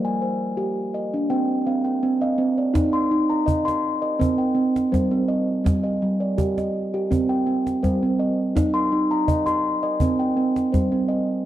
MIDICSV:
0, 0, Header, 1, 3, 480
1, 0, Start_track
1, 0, Key_signature, -3, "minor"
1, 0, Tempo, 725514
1, 1817, Time_signature, 4, 2, 24, 8
1, 7577, End_track
2, 0, Start_track
2, 0, Title_t, "Steel tongue drum"
2, 0, Program_c, 0, 114
2, 0, Note_on_c, 0, 55, 68
2, 31, Note_on_c, 0, 80, 53
2, 139, Note_off_c, 0, 55, 0
2, 144, Note_on_c, 0, 72, 52
2, 378, Note_on_c, 0, 67, 68
2, 382, Note_off_c, 0, 80, 0
2, 506, Note_off_c, 0, 72, 0
2, 618, Note_off_c, 0, 67, 0
2, 624, Note_on_c, 0, 75, 52
2, 752, Note_on_c, 0, 62, 66
2, 860, Note_on_c, 0, 60, 75
2, 860, Note_on_c, 0, 79, 57
2, 863, Note_off_c, 0, 62, 0
2, 986, Note_off_c, 0, 75, 0
2, 1094, Note_off_c, 0, 60, 0
2, 1101, Note_on_c, 0, 77, 53
2, 1102, Note_on_c, 0, 60, 64
2, 1212, Note_off_c, 0, 79, 0
2, 1220, Note_on_c, 0, 79, 48
2, 1334, Note_off_c, 0, 60, 0
2, 1342, Note_on_c, 0, 60, 71
2, 1457, Note_off_c, 0, 77, 0
2, 1465, Note_on_c, 0, 75, 59
2, 1465, Note_on_c, 0, 77, 51
2, 1557, Note_off_c, 0, 60, 0
2, 1575, Note_on_c, 0, 60, 80
2, 1576, Note_off_c, 0, 79, 0
2, 1703, Note_off_c, 0, 75, 0
2, 1704, Note_on_c, 0, 74, 49
2, 1793, Note_off_c, 0, 60, 0
2, 1811, Note_on_c, 0, 63, 73
2, 1819, Note_off_c, 0, 77, 0
2, 1939, Note_on_c, 0, 84, 54
2, 1943, Note_off_c, 0, 74, 0
2, 2051, Note_off_c, 0, 63, 0
2, 2059, Note_on_c, 0, 63, 71
2, 2181, Note_on_c, 0, 82, 55
2, 2290, Note_on_c, 0, 75, 69
2, 2295, Note_off_c, 0, 84, 0
2, 2415, Note_on_c, 0, 84, 56
2, 2534, Note_off_c, 0, 75, 0
2, 2536, Note_off_c, 0, 82, 0
2, 2659, Note_on_c, 0, 75, 67
2, 2751, Note_off_c, 0, 63, 0
2, 2773, Note_off_c, 0, 84, 0
2, 2775, Note_off_c, 0, 75, 0
2, 2775, Note_on_c, 0, 60, 93
2, 2899, Note_on_c, 0, 79, 53
2, 3000, Note_off_c, 0, 60, 0
2, 3008, Note_on_c, 0, 60, 73
2, 3253, Note_off_c, 0, 60, 0
2, 3254, Note_on_c, 0, 72, 55
2, 3255, Note_off_c, 0, 79, 0
2, 3256, Note_on_c, 0, 55, 75
2, 3382, Note_on_c, 0, 60, 69
2, 3495, Note_on_c, 0, 75, 55
2, 3620, Note_off_c, 0, 72, 0
2, 3622, Note_off_c, 0, 60, 0
2, 3710, Note_off_c, 0, 55, 0
2, 3733, Note_on_c, 0, 55, 70
2, 3852, Note_off_c, 0, 75, 0
2, 3860, Note_on_c, 0, 75, 57
2, 3975, Note_off_c, 0, 55, 0
2, 3983, Note_on_c, 0, 55, 75
2, 4104, Note_on_c, 0, 74, 54
2, 4216, Note_off_c, 0, 75, 0
2, 4219, Note_on_c, 0, 67, 73
2, 4354, Note_on_c, 0, 75, 55
2, 4458, Note_off_c, 0, 67, 0
2, 4458, Note_off_c, 0, 74, 0
2, 4590, Note_on_c, 0, 67, 68
2, 4674, Note_off_c, 0, 55, 0
2, 4701, Note_off_c, 0, 67, 0
2, 4702, Note_on_c, 0, 60, 93
2, 4703, Note_off_c, 0, 75, 0
2, 4824, Note_on_c, 0, 79, 57
2, 4932, Note_off_c, 0, 60, 0
2, 4940, Note_on_c, 0, 60, 68
2, 5178, Note_off_c, 0, 60, 0
2, 5178, Note_off_c, 0, 79, 0
2, 5179, Note_on_c, 0, 55, 76
2, 5180, Note_on_c, 0, 72, 55
2, 5311, Note_on_c, 0, 60, 69
2, 5421, Note_on_c, 0, 75, 57
2, 5544, Note_off_c, 0, 72, 0
2, 5547, Note_off_c, 0, 60, 0
2, 5632, Note_off_c, 0, 55, 0
2, 5660, Note_on_c, 0, 63, 72
2, 5781, Note_on_c, 0, 84, 59
2, 5784, Note_off_c, 0, 75, 0
2, 5894, Note_off_c, 0, 63, 0
2, 5902, Note_on_c, 0, 63, 73
2, 6027, Note_on_c, 0, 82, 56
2, 6137, Note_off_c, 0, 84, 0
2, 6139, Note_on_c, 0, 75, 70
2, 6259, Note_on_c, 0, 84, 59
2, 6379, Note_off_c, 0, 75, 0
2, 6380, Note_off_c, 0, 82, 0
2, 6502, Note_on_c, 0, 75, 69
2, 6594, Note_off_c, 0, 63, 0
2, 6616, Note_off_c, 0, 84, 0
2, 6618, Note_off_c, 0, 75, 0
2, 6626, Note_on_c, 0, 60, 91
2, 6744, Note_on_c, 0, 79, 57
2, 6851, Note_off_c, 0, 60, 0
2, 6859, Note_on_c, 0, 60, 71
2, 7095, Note_on_c, 0, 72, 54
2, 7099, Note_off_c, 0, 60, 0
2, 7099, Note_off_c, 0, 79, 0
2, 7101, Note_on_c, 0, 55, 74
2, 7224, Note_on_c, 0, 60, 71
2, 7333, Note_on_c, 0, 75, 60
2, 7462, Note_off_c, 0, 72, 0
2, 7464, Note_off_c, 0, 60, 0
2, 7554, Note_off_c, 0, 55, 0
2, 7577, Note_off_c, 0, 75, 0
2, 7577, End_track
3, 0, Start_track
3, 0, Title_t, "Cajon"
3, 1821, Note_on_c, 9, 36, 54
3, 1821, Note_on_c, 9, 38, 53
3, 1887, Note_off_c, 9, 36, 0
3, 1887, Note_off_c, 9, 38, 0
3, 1949, Note_on_c, 9, 38, 16
3, 2015, Note_off_c, 9, 38, 0
3, 2195, Note_on_c, 9, 38, 17
3, 2261, Note_off_c, 9, 38, 0
3, 2301, Note_on_c, 9, 36, 47
3, 2367, Note_off_c, 9, 36, 0
3, 2435, Note_on_c, 9, 38, 41
3, 2501, Note_off_c, 9, 38, 0
3, 2788, Note_on_c, 9, 36, 50
3, 2854, Note_off_c, 9, 36, 0
3, 3150, Note_on_c, 9, 38, 42
3, 3216, Note_off_c, 9, 38, 0
3, 3267, Note_on_c, 9, 36, 49
3, 3267, Note_on_c, 9, 38, 16
3, 3333, Note_off_c, 9, 36, 0
3, 3333, Note_off_c, 9, 38, 0
3, 3746, Note_on_c, 9, 36, 55
3, 3746, Note_on_c, 9, 38, 54
3, 3812, Note_off_c, 9, 36, 0
3, 3812, Note_off_c, 9, 38, 0
3, 3870, Note_on_c, 9, 38, 17
3, 3937, Note_off_c, 9, 38, 0
3, 4223, Note_on_c, 9, 36, 45
3, 4289, Note_off_c, 9, 36, 0
3, 4352, Note_on_c, 9, 38, 42
3, 4418, Note_off_c, 9, 38, 0
3, 4709, Note_on_c, 9, 36, 46
3, 4775, Note_off_c, 9, 36, 0
3, 5072, Note_on_c, 9, 38, 41
3, 5139, Note_off_c, 9, 38, 0
3, 5187, Note_on_c, 9, 36, 49
3, 5187, Note_on_c, 9, 38, 16
3, 5254, Note_off_c, 9, 36, 0
3, 5254, Note_off_c, 9, 38, 0
3, 5667, Note_on_c, 9, 36, 53
3, 5667, Note_on_c, 9, 38, 51
3, 5733, Note_off_c, 9, 36, 0
3, 5733, Note_off_c, 9, 38, 0
3, 5788, Note_on_c, 9, 38, 17
3, 5854, Note_off_c, 9, 38, 0
3, 6025, Note_on_c, 9, 38, 16
3, 6091, Note_off_c, 9, 38, 0
3, 6140, Note_on_c, 9, 36, 49
3, 6206, Note_off_c, 9, 36, 0
3, 6262, Note_on_c, 9, 38, 41
3, 6329, Note_off_c, 9, 38, 0
3, 6616, Note_on_c, 9, 36, 50
3, 6683, Note_off_c, 9, 36, 0
3, 6988, Note_on_c, 9, 38, 42
3, 7054, Note_off_c, 9, 38, 0
3, 7106, Note_on_c, 9, 36, 56
3, 7106, Note_on_c, 9, 38, 17
3, 7172, Note_off_c, 9, 36, 0
3, 7172, Note_off_c, 9, 38, 0
3, 7577, End_track
0, 0, End_of_file